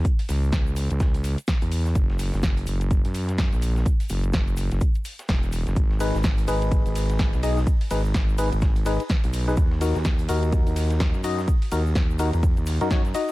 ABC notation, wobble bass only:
X:1
M:4/4
L:1/16
Q:"Swing 16ths" 1/4=126
K:G#m
V:1 name="Wobble bass" clef=bass
z2 C,,2 C,,3 C,,4 z2 E,,3 | F,,,3 F,,,3 F,,,3 F,,4 A,,,3 | z2 F,,,2 F,,,3 F,,, z4 E,,,3 F,,, | G,,,3 G,,,3 G,,,3 G,,,4 B,,,3 |
z2 G,,,2 G,,,3 G,,,4 z2 B,,,3 | D,,3 D,,3 D,,3 D,,4 F,,3 | z2 D,,2 D,,3 E,,2 D,,2 F,,3 z2 |]